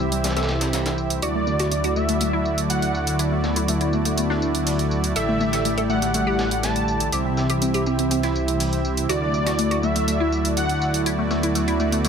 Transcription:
Already playing: C2 C3 E3 G3 C4 E4 G4 E5
0.00 tambourine
0.12 G3, closed hi-hat
0.24 G3, snare, closed hi-hat, tambourine
0.30 snare, tambourine
0.37 A4, snare, closed hi-hat, tambourine
0.43 snare, tambourine
0.49 snare, tambourine
0.61 snare, closed hi-hat, tambourine
0.73 snare, closed hi-hat, tambourine
0.86 snare, closed hi-hat, tambourine
0.98 tambourine
1.10 closed hi-hat
1.22 D2 D3 F#3 A3 E4 F#4 D5, closed hi-hat, tambourine
1.35 A3
1.47 A3, tambourine
1.59 F#4, snare, closed hi-hat
1.71 A3, closed hi-hat, tambourine
1.84 F#4, closed hi-hat
1.96 A3 E5, tambourine
2.09 A3, closed hi-hat
2.21 A3, closed hi-hat, tambourine
2.33 E4
2.45 tambourine
2.58 closed hi-hat
2.70 F#5, closed hi-hat, tambourine
2.82 closed hi-hat
2.95 tambourine
3.07 closed hi-hat
3.19 B3 E4, closed hi-hat, tambourine
3.32 A3
3.44 A3, snare, tambourine
3.56 E4, closed hi-hat
3.68 A3, closed hi-hat, tambourine
3.81 E4, closed hi-hat
3.93 A3, tambourine
4.05 A3, closed hi-hat
4.17 A3, closed hi-hat, tambourine
4.30 D4, snare
4.42 tambourine
4.55 closed hi-hat
4.67 closed hi-hat, open hi-hat
4.79 closed hi-hat
4.91 tambourine
5.04 closed hi-hat
5.16 A1 G3 A3 E4 G4 A4 D5 E5, closed hi-hat, tambourine
5.28 A3
5.40 A3, tambourine
5.53 A4, snare, closed hi-hat
5.65 A3, closed hi-hat, tambourine
5.78 A4, closed hi-hat
5.90 A3 F#5, tambourine
6.02 A3, closed hi-hat
6.14 A3, closed hi-hat, tambourine
6.27 G4
6.39 snare, tambourine
6.51 closed hi-hat
6.63 A5, snare, closed hi-hat, tambourine
6.76 closed hi-hat
6.88 tambourine
7.00 closed hi-hat
7.12 C2 C3 E3 C4 E4 G4 E5, closed hi-hat, tambourine
7.25 C4
7.37 C4, snare, tambourine
7.50 G4, closed hi-hat
7.62 C4, closed hi-hat, tambourine
7.74 G4, closed hi-hat
7.86 C4, tambourine
7.99 C4, closed hi-hat
8.11 C4, closed hi-hat, tambourine
8.23 E4, snare, closed hi-hat
8.36 tambourine
8.48 closed hi-hat
8.60 closed hi-hat, open hi-hat
8.73 closed hi-hat
8.85 tambourine
8.97 closed hi-hat
9.09 D2 D3 F#3 A3 E4 F#4 D5, closed hi-hat, tambourine
9.22 A3
9.34 A3, tambourine
9.46 F#4, snare, closed hi-hat
9.59 A3, closed hi-hat, tambourine
9.71 F#4, closed hi-hat
9.83 A3 E5, tambourine
9.96 A3, closed hi-hat
10.08 A3, closed hi-hat, tambourine
10.20 E4
10.32 tambourine
10.45 closed hi-hat
10.57 F#5, closed hi-hat, tambourine
10.69 closed hi-hat
10.82 tambourine
10.94 closed hi-hat
11.06 B3 E4, closed hi-hat, tambourine
11.19 A3
11.31 A3, snare, tambourine
11.43 E4, closed hi-hat
11.55 A3, closed hi-hat, tambourine
11.68 E4, closed hi-hat
11.80 A3, tambourine
11.92 A3, closed hi-hat
12.04 A3, closed hi-hat, tambourine

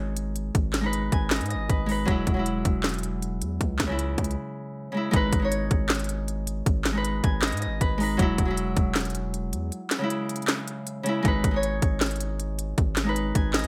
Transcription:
Already playing: G#1 G#3 D#4 C#5
0.17 closed hi-hat
0.36 closed hi-hat
0.55 G#1, kick, closed hi-hat
0.73 snare, clap, closed hi-hat
0.81 G#3 D#4
0.86 B4
0.93 closed hi-hat
1.12 G#1 G#5, kick, closed hi-hat
1.31 D#5, snare, clap, closed hi-hat
1.36 closed hi-hat
1.41 G#2, closed hi-hat
1.46 closed hi-hat
1.50 D#5, closed hi-hat
1.55 G#1
1.69 G#1 B4, kick, closed hi-hat
1.86 G#3 D#4, open hi-hat
1.91 B4
2.05 E1 F#3 G#3, kick, closed hi-hat
2.10 E4
2.27 E1, kick, closed hi-hat
2.34 F#3 G#3
2.39 E4
2.46 closed hi-hat
2.65 E1, kick, closed hi-hat
2.84 snare, clap, closed hi-hat
2.89 closed hi-hat
2.94 closed hi-hat
2.99 closed hi-hat
3.03 closed hi-hat
3.22 closed hi-hat
3.42 E2, closed hi-hat
3.61 C#2, kick, closed hi-hat
3.79 C#2, kick, snare, clap, closed hi-hat
3.87 C#3 G#3
3.92 E4
3.99 closed hi-hat
4.18 C#2, kick, closed hi-hat
4.24 closed hi-hat
4.31 closed hi-hat
4.92 C#3 G#3
4.97 E4
5.11 G#1 G#3 D#4, kick, closed hi-hat
5.16 B4
5.33 G#1, kick, closed hi-hat
5.39 G#3 D#4
5.44 C#5
5.52 closed hi-hat
5.71 G#1, kick, closed hi-hat
5.89 snare, clap, closed hi-hat
5.95 closed hi-hat
5.99 closed hi-hat
6.04 closed hi-hat
6.09 closed hi-hat
6.28 closed hi-hat
6.47 closed hi-hat
6.66 G#1, kick, closed hi-hat
6.85 snare, clap, closed hi-hat
6.92 G#3 D#4
6.97 B4
7.05 closed hi-hat
7.24 G#1 G#5, kick, closed hi-hat
7.42 D#5, snare, clap, closed hi-hat
7.48 closed hi-hat
7.52 G#2, closed hi-hat
7.57 closed hi-hat
7.62 D#5, closed hi-hat
7.67 G#1
7.81 G#1 B4, kick, closed hi-hat
7.98 G#3 D#4, open hi-hat
8.03 B4
8.17 E1 F#3 G#3, kick, closed hi-hat
8.22 E4
8.38 E1, kick, closed hi-hat
8.45 F#3 G#3
8.51 E4
8.57 closed hi-hat
8.77 E1, kick, closed hi-hat
8.95 snare, clap, closed hi-hat
9.00 closed hi-hat
9.05 closed hi-hat
9.10 closed hi-hat
9.15 closed hi-hat
9.34 closed hi-hat
9.53 E2, closed hi-hat
9.72 closed hi-hat
9.91 snare, clap, closed hi-hat
9.98 C#3 G#3
10.03 E4
10.10 closed hi-hat
10.29 closed hi-hat
10.36 closed hi-hat
10.42 closed hi-hat
10.48 snare, clap, closed hi-hat
10.68 closed hi-hat
10.87 closed hi-hat
11.03 C#3 G#3, closed hi-hat
11.08 E4
11.23 G#1 G#3 D#4, kick, closed hi-hat
11.28 B4
11.44 G#1, kick, closed hi-hat
11.51 G#3 D#4
11.56 C#5
11.63 closed hi-hat
11.82 G#1, kick, closed hi-hat
12.01 snare, clap, closed hi-hat
12.06 closed hi-hat
12.11 closed hi-hat
12.16 closed hi-hat
12.20 closed hi-hat
12.40 closed hi-hat
12.59 closed hi-hat
12.78 G#1, kick, closed hi-hat
12.96 snare, clap, closed hi-hat
13.04 G#3 D#4
13.09 B4
13.16 closed hi-hat
13.35 G#1 G#5, kick, closed hi-hat
13.54 D#5, snare, clap, closed hi-hat
13.59 closed hi-hat
13.64 G#2, closed hi-hat

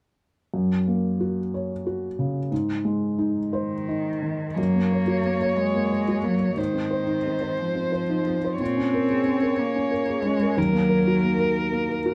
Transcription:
0.54 F#2
0.87 A#3
1.20 F#4
1.54 C#5
1.87 F#4
2.19 C#3
2.52 G#2
2.85 G#3
3.19 D#4
3.52 D#3 C5
3.88 D#4
4.22 D#3
4.57 F#2 A#3 C#5
4.75 A#3
4.92 C#5
5.08 F#4
5.25 A#3
5.42 C#5
5.56 G#3
5.75 A#3
5.91 C#5
6.08 F#4
6.23 F#3 A#3
6.39 C#5
6.57 G#2 D#3 C5
6.74 C4
6.91 C5
7.07 D#4
7.26 C4
7.41 C5
7.59 F3
7.75 C4
7.92 C5
8.10 D#4
8.27 C4
8.44 C5
8.60 A#2 C4 C#5
8.77 C#4
8.94 A#4
9.10 G#4
9.26 C#4
9.42 A#4
9.59 A#3
9.76 C#4
9.91 A#4
10.08 G#4
10.22 G#3 C#4
10.42 A#4
10.56 D#2 F#3 A#4
10.73 A#3
10.89 A#4
11.07 F#4
11.23 A#3
11.39 A#4
11.72 A#3
11.89 A#4
12.06 F#4

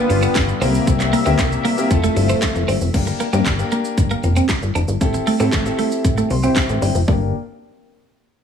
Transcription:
Already playing: D3 G3 B3 D4 F4 G4 B4
0.10 G1, muted clean electric guitar stroke, open hi-hat, shaker
0.22 B3, shaker
0.35 G1, kick, snare, clap, closed hi-hat, shaker
0.49 shaker
0.61 C2 C3 A#3 C4 E4 G4 A#4 E5, open hi-hat, shaker
0.74 shaker
0.87 C2, kick, closed hi-hat, shaker
1.00 muted clean electric guitar stroke, clap, shaker
1.13 A#3, open hi-hat, shaker
1.26 D2 A#3 C4 E4 G4 A#4, shaker
1.38 C2, kick, snare, clap, closed hi-hat, shaker
1.52 shaker
1.65 A#3, open hi-hat, shaker
1.77 A#3 C4 E4 G4 A#4, shaker
1.90 F1 F3 A3 C4 E4 F4 A4, kick, closed hi-hat, shaker
2.04 A3, shaker
2.16 G1, muted clean electric guitar stroke, open hi-hat, shaker
2.29 C4, shaker
2.42 kick, snare, clap, closed hi-hat, shaker
2.55 F1, shaker
2.68 G1 C4, open hi-hat, shaker
2.81 F1, shaker
2.94 G1 A#3 D4 G4 A#4, kick, closed hi-hat, crash, shaker
3.07 muted clean electric guitar stroke, shaker
3.20 A#3, closed hi-hat, shaker
3.32 G2 A#3 C4 D4 G4 A#4, shaker
3.45 G1, kick, snare, clap, closed hi-hat, shaker
3.58 A#3 D4 G4 A#4, shaker
3.72 A#3, closed hi-hat, shaker
3.85 shaker
3.98 G1, kick, closed hi-hat, shaker
4.11 A#3, shaker
4.23 F1, muted clean electric guitar stroke, closed hi-hat, shaker
4.36 C4, shaker
4.49 kick, snare, clap, closed hi-hat, shaker
4.62 G1, shaker
4.75 F1 D4, closed hi-hat, shaker
4.88 G1, shaker
5.01 A1 C4 E4 G4 A4, kick, closed hi-hat, shaker
5.14 muted clean electric guitar stroke, shaker
5.27 A3, open hi-hat, shaker
5.40 A2 C4 E4 G4 A4, shaker
5.52 A1, kick, snare, clap, closed hi-hat, shaker
5.65 C4 E4 G4 A4, shaker
5.79 A3, open hi-hat, shaker
5.92 shaker
6.04 A1, kick, closed hi-hat, shaker
6.18 A3, shaker
6.30 C2 C6, muted clean electric guitar stroke, open hi-hat, shaker
6.43 C4 E4 G4 C5, shaker
6.55 kick, snare, clap, closed hi-hat, shaker
6.69 A1, shaker
6.82 G1 D4, open hi-hat, shaker
6.95 F1, shaker
7.08 G1 A#3 D4 G4 A#4, kick

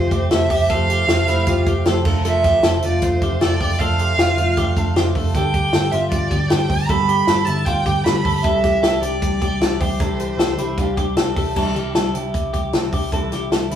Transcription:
Already playing: F3 A3 C4 C5
0.11 F1 A3 C4 G4, kick, closed hi-hat
0.30 F1 F3 A3 C4 G4 A4 E5, snare, closed hi-hat
0.50 F1 A3 C4 G4, kick, open hi-hat
0.69 F1 F3 A3 C4 G4 A4 F5, kick, closed hi-hat
0.90 G4, closed hi-hat
1.08 F1 A4, snare, closed hi-hat
1.27 F1 A3 C4 E4 G4, closed hi-hat
1.46 F1 F3 A3 C4 F4 G4, kick, closed hi-hat
1.66 F1 A3 C4 G4, kick, closed hi-hat
1.85 F1 F3 A3 C4 G4 A4, snare, closed hi-hat
2.05 F1 A3 D4 F4 A4, kick, crash
2.24 F3 A3 D4 F4 A4 E5, closed hi-hat
2.44 G4, kick, snare, closed hi-hat
2.63 F1 A4, snare, closed hi-hat
2.82 F1 A3 D4 F4 D5, closed hi-hat
3.01 F1 F3 A3 D4 F4 C5, kick, closed hi-hat
3.21 F1 A3 D4 F4 G4, kick, closed hi-hat
3.40 F1 F3 A3 D4 F4 A4 D5, snare, closed hi-hat
3.59 F1 A3 D4 F4 G4, kick, open hi-hat
3.79 F1 F3 A3 D4 F4 A4 F5, kick, closed hi-hat
3.99 G4, closed hi-hat
4.18 F1 F4, snare, closed hi-hat
4.37 F1 A3 D4 F4, closed hi-hat
4.57 F1 F3 A3 D4 F4 G4, kick, closed hi-hat
4.76 F1 A3 D4 F4 A4, kick, closed hi-hat
4.96 F1 F3 A3 D4 F4 G4, snare, closed hi-hat
5.15 F1 D4 F4 A4, kick, open hi-hat
5.19 A3
5.34 G1 G2 D3 G3 B3 D4 G4 A4 G5, kick, closed hi-hat
5.54 G4, kick, closed hi-hat
5.73 G1 A4, snare, closed hi-hat
5.92 G1 G3 B3 D4 F4 G4 E5, closed hi-hat
6.11 G1 G3 B3 D4 D5, kick, closed hi-hat
6.15 G4
6.31 G1 G3 B3 D4 G4, kick, closed hi-hat
6.49 G1 G3 B3 D4 A4 G5, snare, closed hi-hat
6.54 G4
6.69 G1 G3 B3 D4 G4, kick, open hi-hat
6.87 G1 G2 D3 G3 B3 D4 A4 B5, kick, closed hi-hat
6.91 G4
7.09 G4, closed hi-hat
7.27 G1 A4, snare, closed hi-hat
7.45 G1 B3 D4 E4 G4 A5, closed hi-hat
7.49 G3
7.65 G1 G3 B3 D4 F4 G4 G5, kick, closed hi-hat
7.84 G1 G3 B3 D4 G4, kick, closed hi-hat
8.03 G1 G3 B3 D4 G4 A4 B5, snare, closed hi-hat
8.24 G1 G3 B3 D4 G4 A4, kick, open hi-hat
8.43 C2 C3 E3 G3 D4 G4 A4 E5, kick, closed hi-hat
8.64 G4, kick, snare, closed hi-hat
8.83 C2 A4, snare, closed hi-hat
9.02 C2 G3 D4 G4 D5, closed hi-hat
9.22 C2 E3 G3 D4 G4, kick, closed hi-hat
9.41 C2 G3 D4 G4, kick, closed hi-hat
9.60 C2 E3 G3 D4 G4 A4, snare, closed hi-hat
9.79 C2 G3 D4 G4 C5, kick, open hi-hat
10.00 C2 C3 E3 G3 D4 G4 A4, kick, closed hi-hat
10.20 G4, closed hi-hat
10.38 C2 A4, snare, closed hi-hat
10.58 C2 G3 D4 E4 G4, closed hi-hat
10.78 C2 E3 G3 D4 F4 G4, kick, closed hi-hat
10.97 C2 G3 D4 G4, kick, closed hi-hat
11.17 C2 E3 G3 D4 G4 A4, snare, closed hi-hat
11.36 C2 G3 D4 G4 A4, kick, open hi-hat
11.56 C2 C3 E3 G3 D4 E4 A4, kick, crash
11.75 C2 G3 D4 E4 G4, closed hi-hat
11.95 C2 E3 G3 D4 A4, snare, closed hi-hat
11.99 E4
12.14 C2 G3 D4 E4 G4, closed hi-hat
12.34 C2, kick, closed hi-hat
12.53 C2 G4, kick, closed hi-hat
12.72 C2 E3 G3 D4 E4 A4, snare, closed hi-hat
12.92 C2 G3 D4 E4 G4, kick, open hi-hat
13.11 C2 C3 E3 G3 D4 E4 A4, kick, closed hi-hat
13.30 C2 G3 D4 E4 G4, snare, closed hi-hat
13.51 C2 E3 G3 D4 E4 A4, snare, closed hi-hat
13.70 C2 D4 E4, closed hi-hat

